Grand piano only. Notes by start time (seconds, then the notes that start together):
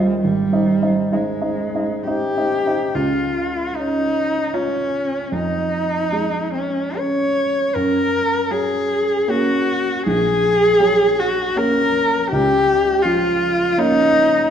Already playing: D#2 F4 C5 D#5
0.24 G#1
0.52 D#4 C5 D#5
0.82 D#4 C5 D#5
1.12 D#4 C5 D#5
1.41 D#4 C5 D#5
1.74 D#4 C5 D#5
2.07 D#4 C5 D#5
2.37 D#4 C5 D#5
2.66 D#4 C5 D#5
2.95 C#2
3.79 C#4
4.53 C#4 F4
5.32 F2
6.12 G#3
6.96 C#4
7.76 F#2
8.51 F#3
9.28 A#3 C#4
10.06 A#1
10.80 F#3
11.56 A#3 C#4
12.32 C#2
13.05 F3
13.78 A#3 C#4